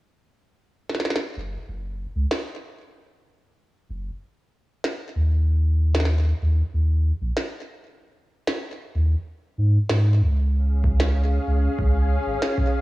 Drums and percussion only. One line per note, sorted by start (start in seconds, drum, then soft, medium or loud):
0.89 snare soft
0.95 snare medium
1.00 snare medium
1.05 snare medium
1.10 snare medium
1.16 snare medium
2.31 snare loud
4.84 snare loud
5.95 snare loud
6.00 snare medium
6.05 snare medium
7.37 snare loud
8.47 snare loud
9.89 snare loud
10.84 kick loud
11.00 snare loud
11.79 kick loud
12.42 snare loud
12.58 kick loud